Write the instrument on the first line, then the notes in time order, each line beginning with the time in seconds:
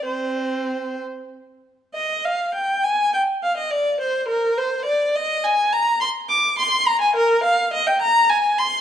violin
0.06 C4 C5
1.95 D#5
2.25 F5
2.55 G5
2.84 G#5
3.14 G5
3.43 F5
3.57 D#5
3.71 D5
4.01 C5
4.28 A#4
4.58 C5
4.85 D5
5.16 D#5
5.44 G#5
5.73 A#5
6.01 C6
6.29 D6
6.59 C6
6.87 A#5
7.01 G#5
7.16 A#4
7.44 F5
7.73 D#5
7.87 G5
8.02 A#5
8.30 G#5
8.58 C6